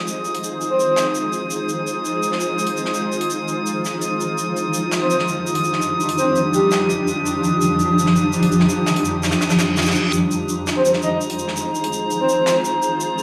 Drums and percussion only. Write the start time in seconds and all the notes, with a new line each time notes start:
0.08 shaker
0.25 shaker
0.35 closed hi-hat
0.44 shaker
0.61 shaker
0.80 shaker
0.96 snare, shaker
1.15 shaker
1.33 shaker
1.50 shaker
1.69 shaker
1.87 shaker
2.05 shaker
2.23 shaker
2.32 snare
2.40 shaker
2.59 shaker
2.67 closed hi-hat
2.77 shaker
2.85 snare
2.94 shaker
3.12 shaker
3.21 closed hi-hat
3.30 shaker
3.48 shaker
3.66 shaker
3.85 snare, shaker
4.02 shaker
4.20 shaker
4.38 shaker
4.57 shaker
4.74 shaker
4.92 snare, shaker
5.10 shaker
5.19 snare
5.28 shaker
5.47 shaker
5.55 closed hi-hat
5.64 shaker
5.73 snare
5.82 shaker
6.00 shaker
6.09 closed hi-hat
6.18 shaker
6.36 shaker
6.54 shaker
6.71 snare, shaker
6.90 shaker
7.08 shaker
7.26 shaker
7.44 shaker
7.61 shaker
7.79 shaker
7.99 shaker
8.06 snare
8.16 shaker
8.33 shaker
8.43 closed hi-hat
8.52 shaker
8.60 snare
8.69 shaker
8.86 snare, shaker
8.96 closed hi-hat
9.05 shaker
9.23 snare, shaker
9.31 snare, shaker
9.41 snare, shaker
9.50 snare, shaker
9.59 snare, shaker
9.77 snare, shaker
9.81 snare, shaker
9.86 snare, shaker
9.91 snare, shaker
9.95 shaker
10.13 shaker
10.31 shaker
10.49 shaker
10.67 snare, shaker
10.85 shaker
10.94 snare
11.02 shaker
11.21 shaker
11.30 closed hi-hat
11.39 shaker
11.48 snare
11.56 shaker
11.75 shaker
11.84 closed hi-hat
11.93 shaker
12.11 shaker
12.29 shaker
12.46 snare, shaker
12.65 shaker
12.82 shaker
13.00 shaker
13.18 shaker